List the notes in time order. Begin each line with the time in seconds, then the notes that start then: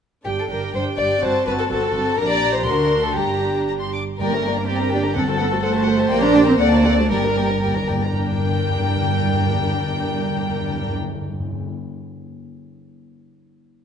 0.25 G1 G2 D4 G4 G5
0.40 A4
0.50 G1 G2 D4 G4 A#4 G5
0.74 G1 G2 D4 G4 C5 G5
0.99 G1 G2 D4 G4 D5 G5
1.23 G1 G2 C4 F#4 C5 A5
1.47 G1 G2 C4 F#4 B4 A5
1.60 A4
1.71 G1 G2 C4 F#4 A4 A5
1.95 G1 G2 C4 F#4 A5
2.18 A#1 A#2 D4 G4 A#4 A#5
2.31 D5
2.55 C5
2.67 D2 D3 D4 F#4 A#4 C6
3.05 A4
3.17 G1 G2 D4 G4 A#5
3.68 A#5
3.80 C6
3.94 D6
4.18 G1 G2 G3 A#3 G4 A#4 D5 G5
4.31 A3 D4 A#4 A#5
4.44 A#3 G4 D5 G5
4.56 D4 A#4 A#5
4.66 A#3 C4 G4 D5 G5
4.79 D4 A#4 A#5
4.92 A#3 D4 G4 D5 G5
5.03 D4 A#4 A#5
5.15 G2 C4 A4 F#5
5.26 F#4 C5 A5
5.39 B3 A4 F#5
5.51 A3 F#4 C5 A5
5.63 A3 A4 C5 F#5
5.75 F#4 C5 A5
5.86 A4 F#5
5.97 F#4 C5 A5
6.09 A#1 A#3 G4 D5 G5
6.20 D4 A#4 A#5
6.33 A#3 G4 D5 G5
6.46 C4 D4 A#4 A#5
6.59 D2 A#3 C4 A4 D5 F#5
6.72 D4 F#4 C5 A5
6.84 C4 A4 D5 F#5
6.97 A3 D4 F#4 C5 A5
7.10 G1 G2 G3 A#3 G4 A#4 D5 G5
7.18 G2
7.23 G2 D4 A#4 A#5
7.34 G2 A#3 G4 D5 G5
7.42 G2
7.49 G2 D4 A#4 A#5
7.58 G2
7.62 G2 A#3 G4 D5 G5
7.74 G2 D4 A#4 A#5
7.82 G2
7.89 G2 A#3 G4 D5 G5
7.98 G2
8.02 D4 A#4 A#5
8.13 G2 G3 D4 A#4 G5
8.19 G2
8.26 G2
8.32 G2
8.38 G2
8.44 G2
8.50 G2
8.56 G2
8.63 G2
8.70 G2
8.76 G2
8.82 G2
8.89 G2
8.96 G2
9.02 G2
9.08 G2
9.15 G2
9.22 G2
9.27 G2
9.34 G2
9.39 G2
9.46 G2
9.53 G2
9.60 G2
9.66 G2
9.73 G2
9.79 G2
9.85 G2
9.92 G2
9.98 G2
10.05 G2
10.11 G2
10.17 G2
10.23 G2
10.29 G2
10.37 G2
10.43 G2
10.49 G2
10.55 G2
10.62 G2
10.68 G2
10.75 G2
10.81 G2
10.88 G2
10.95 G2
11.01 G2
11.07 G2
11.14 G2
11.21 G2
11.28 G2
11.33 G2
11.40 G2
11.46 G2
11.52 G2
11.59 G2